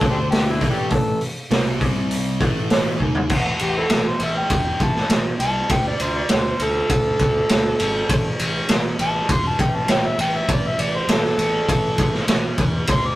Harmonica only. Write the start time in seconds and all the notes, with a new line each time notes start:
0.10 G4 A4 C5
0.30 G4
0.51 E4
0.70 D4 E4 G4
0.90 A4
3.63 G4
3.77 C4 E4 A4
4.08 C5
4.23 E5
4.37 G5
4.83 A5
5.41 A5
5.72 G5
5.88 D5
6.02 C5
6.17 D5
6.33 G4 A4 C5
6.64 A4
9.01 A5
9.32 C6
9.47 A5
9.60 G5
9.76 A5
9.91 G5
10.06 E5
10.21 G5
10.37 E5
10.52 D5
10.67 E5
10.81 D5
10.96 C5
11.11 A4
12.91 C6
13.06 D6